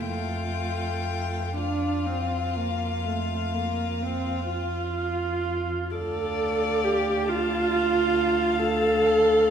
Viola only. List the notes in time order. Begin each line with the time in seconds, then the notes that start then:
0.05 A3
1.55 D4
2.06 C4
2.56 A#3
3.05 A3
3.54 A#3
4.02 C4
4.50 F4
5.95 A4
6.84 G4
7.28 F4
8.59 A4